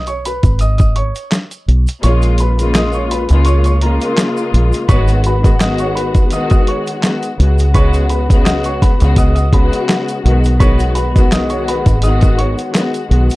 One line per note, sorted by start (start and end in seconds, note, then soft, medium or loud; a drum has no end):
0.00 0.40 B1 loud
0.07 0.23 C#5 medium
0.07 0.22 C#6 medium
0.07 closed hi-hat soft
0.07 shaker medium
0.25 0.58 B4 medium
0.25 0.57 B5 medium
0.25 closed hi-hat medium
0.25 shaker medium
0.43 1.11 G#1 loud
0.43 kick medium
0.43 closed hi-hat medium
0.43 shaker medium
0.59 0.77 D#5 medium
0.59 0.76 D#6 medium
0.59 closed hi-hat medium
0.59 shaker medium
0.78 0.94 D#5 medium
0.78 0.93 D#6 medium
0.78 kick loud
0.78 closed hi-hat soft
0.78 shaker soft
0.96 1.28 C#5 medium
0.96 1.28 C#6 medium
0.96 closed hi-hat medium
1.16 closed hi-hat medium
1.16 shaker soft
1.31 snare loud
1.31 clap medium
1.31 closed hi-hat medium
1.31 shaker medium
1.51 closed hi-hat soft
1.51 shaker medium
1.68 1.85 B1 loud
1.68 closed hi-hat medium
1.87 closed hi-hat medium
1.87 shaker medium
2.02 3.26 A#1 loud
2.02 2.53 C#3 medium
2.02 2.53 G#3 medium
2.02 2.54 A#3 medium
2.02 2.54 F4 loud
2.02 2.36 C#5 medium
2.02 2.35 C#6 loud
2.02 closed hi-hat medium
2.02 shaker medium
2.22 closed hi-hat soft
2.22 shaker medium
2.38 2.72 B4 medium
2.38 2.72 B5 medium
2.38 closed hi-hat medium
2.38 shaker medium
2.56 3.22 C#3 loud
2.56 3.23 G#3 medium
2.56 3.23 A#3 loud
2.56 3.24 F4 loud
2.56 closed hi-hat medium
2.56 shaker medium
2.75 2.93 D#5 medium
2.75 2.93 D#6 medium
2.75 snare loud
2.75 clap medium
2.75 closed hi-hat loud
2.75 shaker medium
2.93 3.09 C#5 medium
2.93 3.09 C#6 medium
2.93 shaker medium
3.11 3.44 B4 medium
3.11 3.43 B5 medium
3.11 closed hi-hat medium
3.11 shaker medium
3.28 3.97 C#2 medium
3.28 3.77 C#3 loud
3.28 3.78 G#3 medium
3.28 3.78 A#3 loud
3.28 3.79 F4 loud
3.28 closed hi-hat medium
3.28 shaker medium
3.45 3.64 C#5 medium
3.45 3.63 C#6 medium
3.45 closed hi-hat medium
3.45 shaker medium
3.64 3.81 C#5 medium
3.64 3.80 C#6 medium
3.64 closed hi-hat soft
3.64 shaker medium
3.81 4.81 C#3 loud
3.81 4.81 G#3 loud
3.81 4.82 A#3 loud
3.81 4.82 F4 loud
3.81 4.85 A#4 medium
3.81 4.85 A#5 medium
3.81 closed hi-hat medium
4.01 closed hi-hat medium
4.01 shaker soft
4.17 snare loud
4.17 clap medium
4.17 closed hi-hat medium
4.17 shaker medium
4.37 shaker medium
4.54 4.71 A#1 medium
4.54 closed hi-hat medium
4.73 closed hi-hat medium
4.73 shaker medium
4.88 6.15 G#1 loud
4.88 5.39 D#3 loud
4.88 5.39 G#3 medium
4.88 5.12 G#3 medium
4.88 5.40 B3 loud
4.88 5.12 F#4 medium
4.88 5.40 F#4 loud
4.88 5.12 B4 loud
4.88 5.21 C#5 medium
4.88 5.21 C#6 loud
4.88 kick loud
4.88 closed hi-hat medium
4.88 shaker medium
5.08 closed hi-hat soft
5.08 shaker medium
5.24 5.58 B4 medium
5.24 5.58 B5 medium
5.24 closed hi-hat medium
5.24 shaker soft
5.42 5.58 D#3 medium
5.42 5.59 G#3 medium
5.42 5.60 B3 medium
5.42 5.61 F#4 loud
5.42 kick loud
5.42 closed hi-hat medium
5.42 shaker medium
5.59 6.26 D#3 loud
5.59 6.26 G#3 medium
5.59 6.27 B3 medium
5.59 6.27 F#4 loud
5.59 5.78 D#5 medium
5.59 5.77 D#6 medium
5.59 snare loud
5.59 clap loud
5.59 closed hi-hat loud
5.59 shaker medium
5.78 5.95 C#5 medium
5.78 5.94 C#6 medium
5.78 closed hi-hat soft
5.78 shaker medium
5.95 6.28 B4 medium
5.95 6.28 B5 medium
5.95 closed hi-hat medium
5.95 shaker medium
6.15 6.83 B1 medium
6.15 kick medium
6.15 closed hi-hat medium
6.15 shaker soft
6.30 6.97 D#3 loud
6.30 6.98 G#3 loud
6.30 6.98 B3 loud
6.30 6.99 F#4 loud
6.30 6.50 D#5 medium
6.30 6.49 D#6 medium
6.30 closed hi-hat medium
6.30 shaker medium
6.50 6.66 D#5 medium
6.50 6.65 D#6 medium
6.50 kick loud
6.50 closed hi-hat soft
6.50 shaker soft
6.67 7.00 C#5 medium
6.67 7.00 C#6 medium
6.67 closed hi-hat medium
6.87 closed hi-hat medium
6.87 shaker soft
7.02 7.36 D#3 medium
7.02 7.36 G#3 medium
7.02 7.37 B3 medium
7.02 7.37 F#4 loud
7.02 snare loud
7.02 clap medium
7.02 closed hi-hat medium
7.02 shaker medium
7.23 closed hi-hat soft
7.23 shaker medium
7.38 8.97 C#2 loud
7.38 7.71 C#3 medium
7.38 7.72 G#3 medium
7.38 7.72 B3 medium
7.38 7.73 F#4 medium
7.38 closed hi-hat medium
7.59 closed hi-hat medium
7.59 shaker medium
7.72 8.24 C#3 loud
7.72 8.24 G#3 medium
7.72 7.97 G#3 loud
7.72 8.25 B3 medium
7.72 7.97 F#4 loud
7.72 8.25 F#4 loud
7.72 7.97 B4 loud
7.72 8.07 C#5 medium
7.72 8.07 C#6 loud
7.72 kick loud
7.72 closed hi-hat medium
7.72 shaker medium
7.94 closed hi-hat soft
7.94 shaker medium
8.10 8.43 B4 medium
8.10 8.42 B5 medium
8.10 closed hi-hat medium
8.10 shaker soft
8.29 8.94 C#3 loud
8.29 8.95 G#3 loud
8.29 8.95 B3 loud
8.29 8.96 F#4 loud
8.29 kick loud
8.29 closed hi-hat medium
8.29 shaker medium
8.44 8.63 D#5 medium
8.44 8.63 D#6 medium
8.44 snare loud
8.44 clap loud
8.44 closed hi-hat loud
8.44 shaker medium
8.64 8.81 C#5 medium
8.64 8.80 C#6 medium
8.64 closed hi-hat soft
8.64 shaker medium
8.82 9.14 B4 medium
8.82 9.14 B5 medium
8.82 kick loud
8.82 snare soft
8.82 closed hi-hat medium
8.82 shaker medium
8.99 9.69 C#2 loud
8.99 9.48 C#3 loud
8.99 9.49 G#3 medium
8.99 9.49 B3 loud
8.99 9.50 F#4 loud
8.99 closed hi-hat medium
8.99 shaker medium
9.16 9.34 D#5 medium
9.16 9.33 D#6 medium
9.16 kick medium
9.16 closed hi-hat medium
9.16 shaker medium
9.35 9.51 D#5 medium
9.35 9.50 D#6 medium
9.35 closed hi-hat soft
9.35 shaker medium
9.50 10.23 C#3 loud
9.50 10.23 G#3 loud
9.50 10.24 B3 loud
9.50 10.25 F#4 loud
9.50 10.57 B5 medium
9.50 kick loud
9.50 closed hi-hat medium
9.55 10.57 B4 medium
9.73 closed hi-hat medium
9.73 shaker soft
9.89 snare loud
9.89 clap medium
9.89 closed hi-hat medium
9.89 shaker medium
10.08 closed hi-hat soft
10.08 shaker medium
10.23 11.83 B1 loud
10.23 10.56 D#3 loud
10.23 10.57 G#3 medium
10.23 10.58 B3 medium
10.23 10.58 F#4 loud
10.23 closed hi-hat medium
10.44 closed hi-hat medium
10.44 shaker medium
10.58 11.09 D#3 medium
10.58 11.10 G#3 medium
10.58 10.83 G#3 loud
10.58 11.10 B3 medium
10.58 10.83 F#4 loud
10.58 11.11 F#4 loud
10.58 10.83 B4 loud
10.58 10.93 C#5 medium
10.58 10.92 C#6 loud
10.58 kick loud
10.58 closed hi-hat medium
10.58 shaker medium
10.79 closed hi-hat soft
10.79 shaker medium
10.95 11.28 B4 medium
10.95 11.28 B5 medium
10.95 closed hi-hat medium
10.95 shaker medium
11.15 11.30 D#3 loud
11.15 11.31 G#3 medium
11.15 11.32 B3 loud
11.15 11.33 F#4 loud
11.15 kick loud
11.15 closed hi-hat medium
11.15 shaker medium
11.31 11.98 D#3 loud
11.31 11.98 G#3 loud
11.31 11.99 B3 loud
11.31 11.99 F#4 loud
11.31 11.50 D#5 medium
11.31 11.49 D#6 medium
11.31 snare loud
11.31 clap medium
11.31 closed hi-hat loud
11.31 shaker medium
11.50 11.65 C#5 medium
11.50 11.65 C#6 medium
11.50 closed hi-hat soft
11.50 shaker medium
11.68 12.01 B4 medium
11.68 12.00 B5 medium
11.68 closed hi-hat medium
11.68 shaker medium
11.86 12.54 G#1 loud
11.86 kick medium
11.86 closed hi-hat medium
11.86 shaker medium
12.01 12.68 D#3 loud
12.01 12.69 G#3 medium
12.01 12.69 B3 loud
12.01 12.70 F#4 loud
12.01 12.20 D#5 medium
12.01 12.19 D#6 medium
12.01 closed hi-hat medium
12.01 shaker medium
12.21 12.37 D#5 medium
12.21 12.36 D#6 medium
12.21 kick loud
12.21 closed hi-hat soft
12.21 shaker medium
12.38 12.71 C#5 medium
12.38 12.71 C#6 medium
12.38 closed hi-hat medium
12.58 closed hi-hat medium
12.58 shaker soft
12.73 13.06 D#3 medium
12.73 13.07 G#3 medium
12.73 13.08 B3 medium
12.73 13.08 F#4 medium
12.73 snare loud
12.73 clap medium
12.73 closed hi-hat medium
12.73 shaker medium
12.94 closed hi-hat soft
12.94 shaker medium
13.07 13.28 B1 loud
13.07 13.36 D#3 medium
13.07 13.36 G#3 medium
13.07 13.36 B3 medium
13.07 13.36 F#4 medium
13.11 closed hi-hat medium
13.30 closed hi-hat medium
13.30 shaker medium